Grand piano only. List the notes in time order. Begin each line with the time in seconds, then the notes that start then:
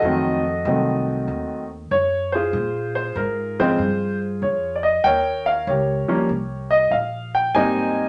Already playing: F#4 A4 D#5
0.04 D#3 F#3 A3 C4
0.67 D#3 F#3 A3 C4
1.91 C#5
2.32 F4 G#4 C5
2.95 C5
3.17 A#4
3.59 C#3 F3 G#3 C4 F4 G#4 C5
4.42 C#5
4.75 D5
4.83 D#5
5.04 A#4 C#5 G5
5.46 F5
5.68 G4 A#4 C#5
6.08 F3 G3 A#3 C#4
6.71 D#5
6.92 F5
7.35 G5
7.55 G3 A#3 C4 D#4 C5 D#5 G#5